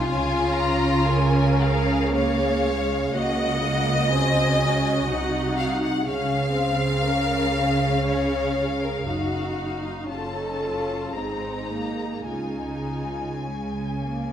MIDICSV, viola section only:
0, 0, Header, 1, 2, 480
1, 0, Start_track
1, 0, Key_signature, -5, "major"
1, 0, Tempo, 975610
1, 46, Time_signature, 3, 2, 24, 8
1, 527, Tempo, 1061947
1, 1007, Tempo, 998336
1, 1487, Tempo, 978793
1, 3407, Tempo, 1016949
1, 4847, Tempo, 1061947
1, 5327, Tempo, 1117318
1, 5807, Tempo, 1165049
1, 6651, End_track
2, 0, Start_track
2, 0, Title_t, "Viola section"
2, 0, Program_c, 0, 48
2, 49, Note_on_c, 0, 61, 69
2, 50, Note_on_c, 0, 65, 69
2, 519, Note_off_c, 0, 61, 0
2, 519, Note_off_c, 0, 65, 0
2, 525, Note_on_c, 0, 70, 78
2, 526, Note_on_c, 0, 61, 77
2, 997, Note_off_c, 0, 61, 0
2, 1006, Note_off_c, 0, 70, 0
2, 1011, Note_on_c, 0, 68, 76
2, 1013, Note_on_c, 0, 58, 72
2, 1253, Note_off_c, 0, 58, 0
2, 1254, Note_on_c, 0, 56, 81
2, 1488, Note_off_c, 0, 56, 0
2, 1489, Note_off_c, 0, 68, 0
2, 1495, Note_on_c, 0, 66, 65
2, 1498, Note_on_c, 0, 58, 66
2, 1728, Note_off_c, 0, 66, 0
2, 1729, Note_on_c, 0, 65, 70
2, 1955, Note_off_c, 0, 58, 0
2, 1957, Note_off_c, 0, 65, 0
2, 1963, Note_on_c, 0, 66, 70
2, 1964, Note_on_c, 0, 60, 73
2, 2202, Note_off_c, 0, 60, 0
2, 2209, Note_on_c, 0, 61, 68
2, 2449, Note_off_c, 0, 61, 0
2, 2453, Note_on_c, 0, 63, 65
2, 2925, Note_on_c, 0, 68, 58
2, 2926, Note_on_c, 0, 61, 67
2, 2927, Note_off_c, 0, 66, 0
2, 2930, Note_off_c, 0, 63, 0
2, 3161, Note_off_c, 0, 61, 0
2, 3162, Note_on_c, 0, 60, 61
2, 3398, Note_off_c, 0, 68, 0
2, 3406, Note_off_c, 0, 60, 0
2, 3408, Note_on_c, 0, 61, 69
2, 3408, Note_on_c, 0, 70, 63
2, 3645, Note_off_c, 0, 70, 0
2, 3647, Note_on_c, 0, 68, 61
2, 4365, Note_off_c, 0, 61, 0
2, 4366, Note_off_c, 0, 68, 0
2, 4368, Note_on_c, 0, 66, 49
2, 4370, Note_on_c, 0, 63, 50
2, 4842, Note_off_c, 0, 63, 0
2, 4850, Note_off_c, 0, 66, 0
2, 4854, Note_on_c, 0, 61, 54
2, 4855, Note_on_c, 0, 69, 54
2, 5331, Note_off_c, 0, 61, 0
2, 5332, Note_off_c, 0, 69, 0
2, 5332, Note_on_c, 0, 60, 49
2, 5333, Note_on_c, 0, 68, 45
2, 5566, Note_off_c, 0, 60, 0
2, 5570, Note_on_c, 0, 58, 49
2, 5801, Note_off_c, 0, 68, 0
2, 5806, Note_off_c, 0, 58, 0
2, 5811, Note_on_c, 0, 65, 39
2, 5813, Note_on_c, 0, 56, 39
2, 6232, Note_off_c, 0, 65, 0
2, 6242, Note_off_c, 0, 56, 0
2, 6293, Note_on_c, 0, 56, 43
2, 6515, Note_off_c, 0, 56, 0
2, 6536, Note_on_c, 0, 58, 46
2, 6651, Note_off_c, 0, 58, 0
2, 6651, End_track
0, 0, End_of_file